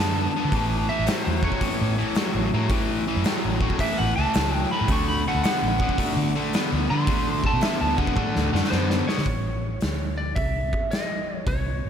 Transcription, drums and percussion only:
0, 0, Header, 1, 2, 480
1, 0, Start_track
1, 0, Key_signature, 3, "major"
1, 0, Tempo, 547445
1, 463, Time_signature, 4, 2, 24, 8
1, 10431, End_track
2, 0, Start_track
2, 0, Title_t, "Drums"
2, 457, Note_on_c, 9, 36, 103
2, 458, Note_on_c, 9, 46, 55
2, 544, Note_off_c, 9, 36, 0
2, 546, Note_off_c, 9, 46, 0
2, 936, Note_on_c, 9, 46, 62
2, 952, Note_on_c, 9, 38, 108
2, 1024, Note_off_c, 9, 46, 0
2, 1039, Note_off_c, 9, 38, 0
2, 1251, Note_on_c, 9, 36, 91
2, 1331, Note_off_c, 9, 36, 0
2, 1331, Note_on_c, 9, 36, 82
2, 1411, Note_on_c, 9, 46, 58
2, 1412, Note_off_c, 9, 36, 0
2, 1412, Note_on_c, 9, 36, 104
2, 1499, Note_off_c, 9, 46, 0
2, 1500, Note_off_c, 9, 36, 0
2, 1882, Note_on_c, 9, 46, 51
2, 1898, Note_on_c, 9, 38, 111
2, 1970, Note_off_c, 9, 46, 0
2, 1986, Note_off_c, 9, 38, 0
2, 2361, Note_on_c, 9, 46, 59
2, 2364, Note_on_c, 9, 36, 109
2, 2449, Note_off_c, 9, 46, 0
2, 2452, Note_off_c, 9, 36, 0
2, 2842, Note_on_c, 9, 46, 58
2, 2858, Note_on_c, 9, 38, 107
2, 2929, Note_off_c, 9, 46, 0
2, 2945, Note_off_c, 9, 38, 0
2, 3162, Note_on_c, 9, 36, 86
2, 3244, Note_off_c, 9, 36, 0
2, 3244, Note_on_c, 9, 36, 77
2, 3325, Note_off_c, 9, 36, 0
2, 3325, Note_on_c, 9, 36, 100
2, 3331, Note_on_c, 9, 46, 60
2, 3412, Note_off_c, 9, 36, 0
2, 3418, Note_off_c, 9, 46, 0
2, 3804, Note_on_c, 9, 46, 57
2, 3819, Note_on_c, 9, 38, 108
2, 3891, Note_off_c, 9, 46, 0
2, 3907, Note_off_c, 9, 38, 0
2, 4280, Note_on_c, 9, 46, 63
2, 4282, Note_on_c, 9, 36, 110
2, 4368, Note_off_c, 9, 46, 0
2, 4369, Note_off_c, 9, 36, 0
2, 4767, Note_on_c, 9, 46, 62
2, 4783, Note_on_c, 9, 38, 112
2, 4855, Note_off_c, 9, 46, 0
2, 4871, Note_off_c, 9, 38, 0
2, 5083, Note_on_c, 9, 36, 89
2, 5164, Note_off_c, 9, 36, 0
2, 5164, Note_on_c, 9, 36, 78
2, 5245, Note_off_c, 9, 36, 0
2, 5245, Note_on_c, 9, 36, 102
2, 5254, Note_on_c, 9, 46, 57
2, 5333, Note_off_c, 9, 36, 0
2, 5341, Note_off_c, 9, 46, 0
2, 5727, Note_on_c, 9, 46, 55
2, 5743, Note_on_c, 9, 38, 101
2, 5815, Note_off_c, 9, 46, 0
2, 5830, Note_off_c, 9, 38, 0
2, 6201, Note_on_c, 9, 36, 105
2, 6201, Note_on_c, 9, 46, 55
2, 6288, Note_off_c, 9, 46, 0
2, 6289, Note_off_c, 9, 36, 0
2, 6520, Note_on_c, 9, 36, 81
2, 6608, Note_off_c, 9, 36, 0
2, 6673, Note_on_c, 9, 46, 57
2, 6688, Note_on_c, 9, 38, 115
2, 6760, Note_off_c, 9, 46, 0
2, 6776, Note_off_c, 9, 38, 0
2, 6998, Note_on_c, 9, 36, 97
2, 7079, Note_off_c, 9, 36, 0
2, 7079, Note_on_c, 9, 36, 91
2, 7152, Note_on_c, 9, 48, 62
2, 7160, Note_off_c, 9, 36, 0
2, 7160, Note_on_c, 9, 36, 97
2, 7239, Note_off_c, 9, 48, 0
2, 7247, Note_off_c, 9, 36, 0
2, 7328, Note_on_c, 9, 38, 60
2, 7415, Note_off_c, 9, 38, 0
2, 7497, Note_on_c, 9, 38, 70
2, 7577, Note_off_c, 9, 38, 0
2, 7577, Note_on_c, 9, 38, 65
2, 7644, Note_off_c, 9, 38, 0
2, 7644, Note_on_c, 9, 38, 80
2, 7731, Note_off_c, 9, 38, 0
2, 7806, Note_on_c, 9, 38, 81
2, 7893, Note_off_c, 9, 38, 0
2, 7968, Note_on_c, 9, 38, 91
2, 8044, Note_off_c, 9, 38, 0
2, 8044, Note_on_c, 9, 38, 91
2, 8105, Note_on_c, 9, 46, 49
2, 8118, Note_on_c, 9, 36, 94
2, 8132, Note_off_c, 9, 38, 0
2, 8193, Note_off_c, 9, 46, 0
2, 8206, Note_off_c, 9, 36, 0
2, 8598, Note_on_c, 9, 46, 48
2, 8614, Note_on_c, 9, 38, 100
2, 8685, Note_off_c, 9, 46, 0
2, 8701, Note_off_c, 9, 38, 0
2, 9085, Note_on_c, 9, 46, 46
2, 9086, Note_on_c, 9, 36, 95
2, 9173, Note_off_c, 9, 46, 0
2, 9174, Note_off_c, 9, 36, 0
2, 9408, Note_on_c, 9, 36, 75
2, 9495, Note_off_c, 9, 36, 0
2, 9570, Note_on_c, 9, 46, 47
2, 9586, Note_on_c, 9, 38, 103
2, 9658, Note_off_c, 9, 46, 0
2, 9674, Note_off_c, 9, 38, 0
2, 10054, Note_on_c, 9, 36, 102
2, 10055, Note_on_c, 9, 46, 41
2, 10142, Note_off_c, 9, 36, 0
2, 10142, Note_off_c, 9, 46, 0
2, 10431, End_track
0, 0, End_of_file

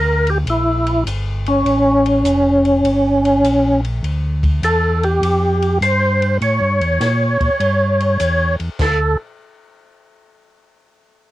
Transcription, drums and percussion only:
0, 0, Header, 1, 2, 480
1, 0, Start_track
1, 0, Key_signature, -1, "minor"
1, 0, Tempo, 594648
1, 1335, Time_signature, 4, 2, 24, 8
1, 9133, End_track
2, 0, Start_track
2, 0, Title_t, "Drums"
2, 215, Note_on_c, 9, 51, 41
2, 296, Note_off_c, 9, 51, 0
2, 378, Note_on_c, 9, 51, 53
2, 459, Note_off_c, 9, 51, 0
2, 698, Note_on_c, 9, 51, 43
2, 779, Note_off_c, 9, 51, 0
2, 861, Note_on_c, 9, 44, 48
2, 861, Note_on_c, 9, 51, 64
2, 942, Note_off_c, 9, 44, 0
2, 942, Note_off_c, 9, 51, 0
2, 1181, Note_on_c, 9, 51, 40
2, 1262, Note_off_c, 9, 51, 0
2, 1340, Note_on_c, 9, 51, 47
2, 1420, Note_off_c, 9, 51, 0
2, 1660, Note_on_c, 9, 51, 42
2, 1740, Note_off_c, 9, 51, 0
2, 1815, Note_on_c, 9, 44, 61
2, 1815, Note_on_c, 9, 51, 57
2, 1896, Note_off_c, 9, 44, 0
2, 1896, Note_off_c, 9, 51, 0
2, 2138, Note_on_c, 9, 51, 40
2, 2219, Note_off_c, 9, 51, 0
2, 2298, Note_on_c, 9, 51, 56
2, 2379, Note_off_c, 9, 51, 0
2, 2623, Note_on_c, 9, 51, 42
2, 2704, Note_off_c, 9, 51, 0
2, 2780, Note_on_c, 9, 44, 43
2, 2780, Note_on_c, 9, 51, 61
2, 2861, Note_off_c, 9, 44, 0
2, 2861, Note_off_c, 9, 51, 0
2, 3104, Note_on_c, 9, 51, 41
2, 3185, Note_off_c, 9, 51, 0
2, 3261, Note_on_c, 9, 51, 48
2, 3341, Note_off_c, 9, 51, 0
2, 3577, Note_on_c, 9, 36, 57
2, 3580, Note_on_c, 9, 51, 43
2, 3658, Note_off_c, 9, 36, 0
2, 3661, Note_off_c, 9, 51, 0
2, 3738, Note_on_c, 9, 44, 48
2, 3738, Note_on_c, 9, 51, 62
2, 3818, Note_off_c, 9, 44, 0
2, 3818, Note_off_c, 9, 51, 0
2, 4062, Note_on_c, 9, 51, 37
2, 4142, Note_off_c, 9, 51, 0
2, 4220, Note_on_c, 9, 51, 58
2, 4301, Note_off_c, 9, 51, 0
2, 4539, Note_on_c, 9, 51, 39
2, 4620, Note_off_c, 9, 51, 0
2, 4699, Note_on_c, 9, 44, 48
2, 4699, Note_on_c, 9, 51, 61
2, 4780, Note_off_c, 9, 44, 0
2, 4780, Note_off_c, 9, 51, 0
2, 5021, Note_on_c, 9, 51, 38
2, 5102, Note_off_c, 9, 51, 0
2, 5179, Note_on_c, 9, 51, 48
2, 5259, Note_off_c, 9, 51, 0
2, 5499, Note_on_c, 9, 51, 38
2, 5580, Note_off_c, 9, 51, 0
2, 5656, Note_on_c, 9, 38, 34
2, 5657, Note_on_c, 9, 44, 49
2, 5657, Note_on_c, 9, 51, 59
2, 5736, Note_off_c, 9, 38, 0
2, 5738, Note_off_c, 9, 44, 0
2, 5738, Note_off_c, 9, 51, 0
2, 5978, Note_on_c, 9, 36, 46
2, 5979, Note_on_c, 9, 51, 38
2, 6059, Note_off_c, 9, 36, 0
2, 6060, Note_off_c, 9, 51, 0
2, 6138, Note_on_c, 9, 51, 53
2, 6218, Note_off_c, 9, 51, 0
2, 6462, Note_on_c, 9, 51, 40
2, 6542, Note_off_c, 9, 51, 0
2, 6617, Note_on_c, 9, 44, 54
2, 6617, Note_on_c, 9, 51, 60
2, 6698, Note_off_c, 9, 44, 0
2, 6698, Note_off_c, 9, 51, 0
2, 6940, Note_on_c, 9, 51, 37
2, 7020, Note_off_c, 9, 51, 0
2, 7097, Note_on_c, 9, 36, 72
2, 7098, Note_on_c, 9, 38, 65
2, 7098, Note_on_c, 9, 49, 66
2, 7178, Note_off_c, 9, 36, 0
2, 7178, Note_off_c, 9, 38, 0
2, 7178, Note_off_c, 9, 49, 0
2, 9133, End_track
0, 0, End_of_file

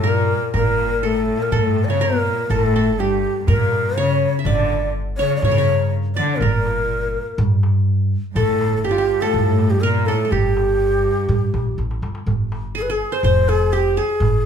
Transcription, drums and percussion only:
0, 0, Header, 1, 2, 480
1, 0, Start_track
1, 0, Tempo, 488202
1, 531, Time_signature, 4, 2, 24, 8
1, 14212, End_track
2, 0, Start_track
2, 0, Title_t, "Darbuka"
2, 535, Note_on_c, 9, 64, 88
2, 633, Note_off_c, 9, 64, 0
2, 772, Note_on_c, 9, 63, 58
2, 870, Note_off_c, 9, 63, 0
2, 1495, Note_on_c, 9, 64, 75
2, 1593, Note_off_c, 9, 64, 0
2, 1732, Note_on_c, 9, 63, 56
2, 1830, Note_off_c, 9, 63, 0
2, 2450, Note_on_c, 9, 64, 73
2, 2548, Note_off_c, 9, 64, 0
2, 2691, Note_on_c, 9, 63, 58
2, 2789, Note_off_c, 9, 63, 0
2, 3413, Note_on_c, 9, 64, 85
2, 3511, Note_off_c, 9, 64, 0
2, 3658, Note_on_c, 9, 63, 58
2, 3757, Note_off_c, 9, 63, 0
2, 4385, Note_on_c, 9, 64, 81
2, 4483, Note_off_c, 9, 64, 0
2, 4624, Note_on_c, 9, 63, 57
2, 4722, Note_off_c, 9, 63, 0
2, 4985, Note_on_c, 9, 62, 23
2, 5083, Note_off_c, 9, 62, 0
2, 5339, Note_on_c, 9, 64, 84
2, 5437, Note_off_c, 9, 64, 0
2, 5589, Note_on_c, 9, 63, 58
2, 5687, Note_off_c, 9, 63, 0
2, 5709, Note_on_c, 9, 62, 21
2, 5807, Note_off_c, 9, 62, 0
2, 5830, Note_on_c, 9, 62, 24
2, 5928, Note_off_c, 9, 62, 0
2, 5952, Note_on_c, 9, 62, 24
2, 6050, Note_off_c, 9, 62, 0
2, 6307, Note_on_c, 9, 64, 90
2, 6405, Note_off_c, 9, 64, 0
2, 6544, Note_on_c, 9, 63, 66
2, 6643, Note_off_c, 9, 63, 0
2, 6906, Note_on_c, 9, 62, 24
2, 7005, Note_off_c, 9, 62, 0
2, 7026, Note_on_c, 9, 62, 22
2, 7124, Note_off_c, 9, 62, 0
2, 7261, Note_on_c, 9, 64, 94
2, 7360, Note_off_c, 9, 64, 0
2, 7504, Note_on_c, 9, 63, 59
2, 7602, Note_off_c, 9, 63, 0
2, 7624, Note_on_c, 9, 62, 25
2, 7722, Note_off_c, 9, 62, 0
2, 7752, Note_on_c, 9, 62, 25
2, 7851, Note_off_c, 9, 62, 0
2, 7990, Note_on_c, 9, 62, 23
2, 8088, Note_off_c, 9, 62, 0
2, 8227, Note_on_c, 9, 64, 87
2, 8326, Note_off_c, 9, 64, 0
2, 8467, Note_on_c, 9, 63, 68
2, 8565, Note_off_c, 9, 63, 0
2, 9191, Note_on_c, 9, 64, 86
2, 9290, Note_off_c, 9, 64, 0
2, 9428, Note_on_c, 9, 63, 64
2, 9526, Note_off_c, 9, 63, 0
2, 9549, Note_on_c, 9, 62, 23
2, 9647, Note_off_c, 9, 62, 0
2, 9668, Note_on_c, 9, 62, 25
2, 9767, Note_off_c, 9, 62, 0
2, 10148, Note_on_c, 9, 64, 79
2, 10247, Note_off_c, 9, 64, 0
2, 10390, Note_on_c, 9, 63, 67
2, 10488, Note_off_c, 9, 63, 0
2, 11101, Note_on_c, 9, 64, 82
2, 11199, Note_off_c, 9, 64, 0
2, 11345, Note_on_c, 9, 63, 62
2, 11444, Note_off_c, 9, 63, 0
2, 11472, Note_on_c, 9, 62, 23
2, 11571, Note_off_c, 9, 62, 0
2, 11591, Note_on_c, 9, 63, 47
2, 11689, Note_off_c, 9, 63, 0
2, 11710, Note_on_c, 9, 62, 60
2, 11808, Note_off_c, 9, 62, 0
2, 11828, Note_on_c, 9, 63, 67
2, 11926, Note_off_c, 9, 63, 0
2, 11945, Note_on_c, 9, 62, 73
2, 12043, Note_off_c, 9, 62, 0
2, 12065, Note_on_c, 9, 64, 81
2, 12164, Note_off_c, 9, 64, 0
2, 12309, Note_on_c, 9, 63, 66
2, 12408, Note_off_c, 9, 63, 0
2, 12546, Note_on_c, 9, 62, 26
2, 12644, Note_off_c, 9, 62, 0
2, 12664, Note_on_c, 9, 62, 22
2, 12762, Note_off_c, 9, 62, 0
2, 13017, Note_on_c, 9, 64, 86
2, 13115, Note_off_c, 9, 64, 0
2, 13254, Note_on_c, 9, 63, 62
2, 13352, Note_off_c, 9, 63, 0
2, 13979, Note_on_c, 9, 64, 99
2, 14077, Note_off_c, 9, 64, 0
2, 14212, End_track
0, 0, End_of_file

